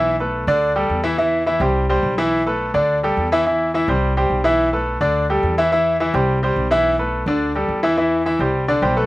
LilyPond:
<<
  \new Staff \with { instrumentName = "Grand piano" } { \time 4/4 \key e \minor \tempo 4 = 212 <e e' e''>8 <a a' b'>4 <d d' d''>4 <g g' a'>4 <e e' e''>8 | <e e' e''>4 <e e' e''>8 <g g' c''>4 <g g' c''>4 <e e' e''>8~ | <e e' e''>8 <a a' b'>4 <d d' d''>4 <g g' a'>4 <e e' e''>8 | <e e' e''>4 <e e' e''>8 <g g' c''>4 <g g' c''>4 <e e' e''>8~ |
<e e' e''>8 <a a' b'>4 <d d' d''>4 <g g' a'>4 <e e' e''>8 | <e e' e''>4 <e e' e''>8 <g g' c''>4 <g g' c''>4 <e e' e''>8~ | <e e' e''>8 <a a' b'>4 <d d' d''>4 <g g' a'>4 <e e' e''>8 | <e e' e''>4 <e e' e''>8 <g g' c''>4 <d d' d''>8 <g g' c''>8 <a a' b'>8 | }
  \new Staff \with { instrumentName = "Upright bass" } { \clef bass \time 4/4 \key e \minor b,,4. d,4. e,4~ | e,4. c,4. b,,4~ | b,,4. d,4. e,4~ | e,4. c,4. b,,4~ |
b,,4. d,4. e,4~ | e,4. c,4. b,,4~ | b,,4. d,4. e,4~ | e,4. c,4. b,,4 | }
>>